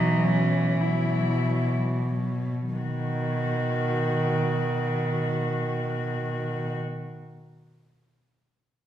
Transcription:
cello
Already playing: B2 E3 F#3 D#4
0.21 F#3 C#4
0.78 B2 F#3 E4
1.40 F#3
2.08 F#3
2.73 B2 D#3 F#4

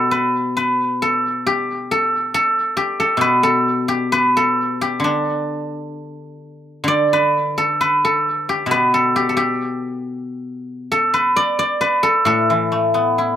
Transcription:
guzheng
Already playing: B2 G3 G4 A4 B4
0.11 B4
0.57 B4
1.02 A4
1.47 G4
1.91 A4
2.34 A4
2.77 G4
3.00 A4
3.17 B2
3.21 B4
3.43 A4
3.88 G4
4.12 B4
4.37 A4
4.81 G4
5.00 D3
5.04 D4
6.84 D3
6.88 D5
7.13 B4
7.58 A4
7.81 B4
8.05 A4
8.49 G4
8.66 B2
8.71 B4
8.94 A4
9.16 G4
9.29 A4
9.37 G4
10.92 A4
11.14 B4
11.36 D5
11.59 D5
11.81 B4
12.03 A4
12.25 A2 A4
12.50 E3
12.72 A3
12.94 B3
13.18 E4

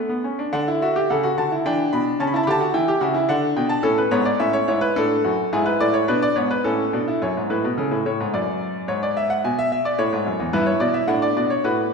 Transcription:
grand piano
Already playing: D3 F#5
0.09 B3
0.24 C#4
0.39 D4
0.53 D3 D4 F#5
0.68 E4
0.82 F#4 E5
0.96 G4
1.10 C#3 A4 F#5
1.23 F#4
1.38 D3 F#4 A5
1.52 E4
1.66 E3 D4 G5
1.93 B2 B5
2.20 C#3 C#4 A5
2.27 B5
2.34 E4 A5
2.43 D3 G4 B5
2.50 A5
2.60 F#4
2.74 E3 E4 G5
2.88 G4
3.01 C#3 F#4 E5
3.14 E4
3.29 D3 D4 F#5
3.56 B2 G5
3.69 A5
3.83 A2 C#4 A4
3.98 B4
4.11 G#2 B3 C#5
4.25 D5
4.40 A2 C#4 E5
4.53 C#5
4.68 G#2 E4 C#5
4.81 B4
4.96 A2 D4 A4
5.24 F#2 F#4
5.53 G#2 E4 G#4
5.66 B4
5.80 A2 D5
5.94 C#5
6.08 B2 D4 B4
6.22 D5
6.36 G#2 B3 C#5
6.51 B4
6.64 A2 C#4 A4
6.93 B2 D4
7.08 E4
7.22 F#2 C#5
7.37 G#2
7.50 A2 B4
7.64 B2
7.77 C#3 A4
7.91 A2
8.06 A2 C#5
8.20 G#2
8.34 F#2 D5
8.88 G#2 C#5
9.03 D5
9.17 E5
9.30 F#5
9.44 B2 G#5
9.59 E5
9.72 E5
9.85 D5
9.99 A2 C#5
10.13 G#2
10.27 F#2
10.40 E2
10.53 G2 E4 B4
10.66 C#5
10.80 B2 D5
10.94 E5
11.08 A2 D4 F#5
11.22 D5
11.36 B2 D5
11.50 C#5
11.64 A2 F#4 B4

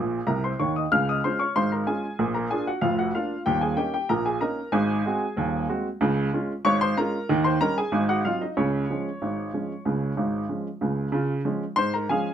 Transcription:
upright piano
Already playing: A#1 A#2 G#4
0.27 C2 C3 A#4 A#5
0.44 C5 C6
0.60 D#2 D#3 C#5 C#6
0.76 D#5 D#6
0.92 C#2 C#3 F5 F6
1.09 D#5 D#6
1.24 G#3 C#4 F4 C5 C6
1.39 C#5 C#6
1.56 G#1 G#2 C5 C6
1.72 A#4 A#5
1.87 G#3 C#4 F4 G#4 G#5
2.19 A#1 A#2
2.34 A#4 A#5
2.51 A#3 D4 F4 G#4 G#5
2.67 F#4 F#5
2.81 F1 F2 F4 F5
2.99 F#4 F#5
3.15 A#3 D4 F4 F5
3.46 D#1 D#2 G4 G5
3.61 G#4 G#5
3.77 A#3 C#4 D#4 G4 G5
3.94 G4 G5
4.09 A#1 A#2 A#4 A#5
4.26 G#4 G#5
4.41 A#3 C#4 D#4 A#4 A#5
4.72 G#1 G#2 G#4 G#5
5.06 G#3 C4 F#4
5.36 D#1 D#2
5.69 G#3 C4 F#4
6.01 C#2 C#3
6.33 G#3 C#4 F4
6.65 G#1 G#2 C#5 C#6
6.81 C5 C6
6.97 G#3 C#4 F4 A#4 A#5
7.29 D#2 D#3
7.44 C5 C6
7.61 G3 C#4 D#4 A#4 A#5
7.78 G#4 G#5
7.92 G#1 G#2
8.09 F#4 F#5
8.25 F#3 C4 D#4 F4 F5
8.41 D#4 D#5
8.57 C#2 C#3 C#4 C#5
8.90 F3 G#3 C#4
9.22 G#1 G#2
9.53 F3 G#3 C#4
9.86 C#2 C#3
10.17 G#1 G#2
10.49 F3 G#3 C#4
10.81 C#2 C#3
11.12 C#3 F4
11.45 F3 G#3 C#4
11.76 G#2 C5 C6
11.94 A#4 A#5
12.09 F3 G#3 C#4 G#4 F5 G#5

